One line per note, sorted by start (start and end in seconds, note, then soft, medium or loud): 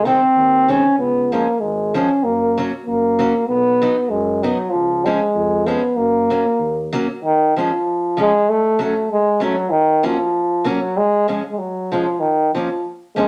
0.00 0.14 C2 medium
0.05 0.19 D#3 medium
0.05 0.20 G#3 medium
0.05 0.71 C4 loud
0.05 0.20 C4 medium
0.35 0.76 D#2 medium
0.68 0.82 D#3 medium
0.68 0.83 G#3 medium
0.68 0.83 C4 medium
0.68 0.99 C#4 loud
0.98 1.39 C#2 medium
0.98 1.34 B3 loud
1.32 1.45 F3 medium
1.32 1.46 G#3 medium
1.32 1.61 A#3 medium
1.32 1.46 C#4 medium
1.60 2.02 G#1 medium
1.60 1.96 G#3 medium
1.94 2.08 F3 medium
1.94 2.08 G#3 medium
1.94 2.25 C#4 medium
1.94 2.09 C#4 medium
2.24 2.65 F#2 medium
2.24 2.62 A#3 loud
2.58 2.71 F#3 medium
2.58 2.71 A#3 medium
2.58 2.72 C#4 medium
2.86 3.28 F#2 medium
2.86 3.45 A#3 medium
3.19 3.33 F#3 medium
3.19 3.33 A#3 medium
3.19 3.33 C#4 medium
3.48 3.89 B1 medium
3.48 4.11 B3 loud
3.82 3.95 F#3 medium
3.82 3.95 B3 medium
3.82 3.95 D#4 medium
4.10 4.51 F#2 loud
4.10 4.45 G#3 medium
4.43 4.57 F#3 medium
4.43 4.71 F#3 medium
4.43 4.57 B3 medium
4.43 4.57 D#4 medium
4.70 5.14 C#2 medium
4.70 5.07 F3 loud
5.05 5.19 F3 medium
5.05 5.68 G#3 medium
5.05 5.19 G#3 medium
5.05 5.19 C#4 medium
5.35 5.75 F2 medium
5.66 5.80 F3 medium
5.66 5.81 G#3 medium
5.66 5.98 B3 medium
5.66 5.81 C#4 medium
5.96 6.37 F#2 medium
5.96 6.94 A#3 medium
6.30 6.43 F#3 medium
6.30 6.44 A#3 medium
6.30 6.44 C#4 medium
6.59 7.00 D#2 medium
6.93 7.06 F#3 medium
6.93 7.06 A#3 medium
6.93 7.07 C#4 medium
7.24 7.55 D#3 loud
7.56 7.70 F3 medium
7.56 8.16 F3 medium
7.56 7.70 G#3 medium
7.56 7.70 C#4 medium
8.17 8.31 F3 medium
8.17 8.31 G#3 medium
8.17 8.51 G#3 loud
8.17 8.31 C#4 medium
8.49 8.82 A3 loud
8.79 8.93 F#3 medium
8.79 8.93 A3 medium
8.79 8.93 C#4 medium
8.83 9.08 A3 medium
9.12 9.42 G#3 loud
9.40 9.54 F#3 medium
9.40 9.55 A3 medium
9.40 9.55 C#4 medium
9.44 9.72 F#3 loud
9.71 10.07 D#3 loud
10.03 10.67 F3 medium
10.03 10.16 F#3 medium
10.03 10.16 A#3 medium
10.03 10.17 C#4 medium
10.64 10.78 F#3 medium
10.64 10.78 A#3 medium
10.64 10.79 C#4 medium
10.69 10.99 F#3 loud
10.97 11.29 G#3 loud
11.28 11.41 F3 medium
11.28 11.41 G#3 medium
11.28 11.39 G#3 medium
11.28 11.42 C#4 medium
11.51 11.60 G#3 medium
11.59 11.95 F#3 medium
11.92 12.04 F3 medium
11.92 12.21 F3 medium
11.92 12.05 G#3 medium
11.92 12.05 C#4 medium
12.20 12.54 D#3 loud
12.54 12.85 F3 medium
12.54 12.67 F3 medium
12.54 12.68 A#3 medium
12.54 12.68 C#4 medium
13.16 13.28 F3 medium
13.16 13.28 G#3 loud
13.16 13.28 A#3 medium
13.16 13.28 C#4 medium